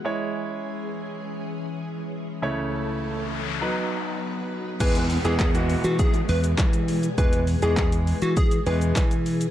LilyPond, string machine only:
\new Staff \with { instrumentName = "String machine" } { \time 4/4 \key e \major \tempo 4 = 101 << { <gis cis' gis'>1 | <cis, a cis' a'>2 <b dis' b'>2 | <gis b gis'>1~ | <gis b gis'>1 | } \\ { e1~ | e2 fis2 | b,1~ | b,1 | } >> }